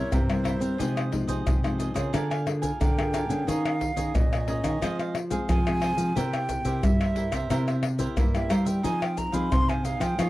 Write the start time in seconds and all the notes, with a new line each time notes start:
Already playing: G3 A#3 E4 A#4 C5 C#5
0.11 G2 C3 E4 A#4 C5 E5, pandeiro, tamborim, maracas, surdo
0.29 G3 A#3 E4, pandeiro, tamborim, maracas
0.44 E4 A#4 C5 E5, pandeiro, tamborim, surdo
0.60 C4 A#4 C5 E5, pandeiro, maracas
0.78 C3 F3 G#3 D#4 F4 G#4 C5 D#5, pandeiro, maracas, surdo
0.96 G#4 C5 D#5, pandeiro, tamborim, maracas
1.12 F3 G#3 D#4, muted cavaquinho stroke, pandeiro, surdo
1.27 C3 G#4 C5 D#5, pandeiro, maracas, surdo
1.46 C3, pandeiro, tamborim, maracas, surdo
1.63 F3 G#3 D#4 G#4 C5 D#5, pandeiro, tamborim, maracas
1.78 F4 G#4 C5 D#5, pandeiro, maracas
1.94 C#3 A#3 F4 G#4 C5 D#5, pandeiro, tamborim, maracas, surdo
2.13 D3 D4 A#4 F5 G#5, pandeiro, tamborim, maracas, surdo
2.30 A#4 F5 G#5, pandeiro, tamborim, maracas
2.46 A#3 F4 G#4, muted cavaquinho stroke, pandeiro, tamborim
2.62 A#4 F5 G#5, pandeiro, maracas, surdo
2.80 D3 D4 A#4 F5 G5, pandeiro, tamborim, maracas, surdo
2.98 A#3 F4 G#4, pandeiro, tamborim, maracas
3.13 D4 A#4 F5 G#5, pandeiro, tamborim, maracas
3.29 D3 A#3 C#4 G#4 A#4 F5 G#5, pandeiro, maracas
3.47 D#3 D#4 G#4 C#5 D#5 F5, pandeiro, maracas, surdo
3.65 C#5 D#5, pandeiro, tamborim, maracas
3.80 muted cavaquinho stroke, pandeiro, surdo
3.96 D#3 A#3 C#4 G#4 C#5 D#5, pandeiro, maracas, surdo
4.14 A#2 D#5, pandeiro, tamborim, maracas, surdo
4.32 G#4 C#5 D#5, pandeiro, tamborim, maracas
4.47 A#3 C#4 D#4 G#4 C#5 D#5, pandeiro
4.64 D#3 G#4 C#5 D#5, pandeiro, tamborim, maracas, surdo
4.82 F3 G#3 C4 F4 G#4 C5 F5, pandeiro, tamborim, maracas, surdo
4.99 G#4 C5 F5, pandeiro, tamborim, maracas
5.15 muted cavaquinho stroke, pandeiro, tamborim
5.30 G#3 C4 G#4 C5 F5, pandeiro, maracas, surdo
5.49 C3 F3 F4 G#4 C5 F5 G#5, pandeiro, tamborim, maracas, surdo
5.66 G#3 C4 G#4, pandeiro, tamborim, maracas
5.81 F4 G#4 C5 F5, pandeiro, tamborim
5.97 F3 G#4 C5 F5, pandeiro, maracas
6.15 C3 A#3 E4 G4 A#4 C5 E5 G5, pandeiro, maracas, surdo
6.33 A#4 C5 E5, pandeiro, tamborim, maracas
6.49 muted cavaquinho stroke, pandeiro, maracas, surdo
6.65 C3 A#3 E4 G4 A#4 C5 E5, pandeiro, maracas, surdo
6.83 G2 G3 E5, pandeiro, tamborim, maracas, surdo
7.00 A#4 C5 E5, pandeiro, tamborim, maracas
7.15 A#3 E4 G4 A#4 C5 E5, pandeiro
7.32 C3 A#4 C5 E5, pandeiro, tamborim, maracas, surdo
7.50 C3 A#3 E4 G4 A#4 C5 E5, pandeiro, tamborim, maracas, surdo
7.67 A#4 C5 E5, pandeiro, tamborim, maracas
7.83 muted cavaquinho stroke, pandeiro, tamborim
7.98 A#3 E4 G4 A#4 C5 E5, pandeiro, maracas, surdo
8.17 G2 A#3 E4 A#4 C5 E5, pandeiro, tamborim, maracas, surdo
8.35 A#3 E4 G4 E5, pandeiro, tamborim, maracas
8.49 G3 E4 A#4 C5 E5 F5, pandeiro, tamborim, maracas
8.65 A#4 C5 E5 G5, pandeiro, maracas
8.83 F3 C4 D#4 G#4 C5 F5 G#5, pandeiro, maracas, surdo
9.01 G#4 C5 F5 G5, pandeiro, tamborim, maracas
9.17 A#5, muted cavaquinho stroke, pandeiro, maracas, surdo
9.32 F3 C4 D#4 G#4 C5 F5 B5, pandeiro, maracas, surdo
9.51 C3 C6, pandeiro, tamborim, maracas, surdo
9.69 G#4 C5 F5 G#5, pandeiro, tamborim, maracas
9.84 C4 D#4 G#4 C5 F5, pandeiro, maracas
10.00 F3 G#4 C5 F5 G5, pandeiro, tamborim, maracas, surdo
10.18 F3 C#4 D#4 F4 G#4 C#5 D#5 F5, pandeiro, tamborim, maracas, surdo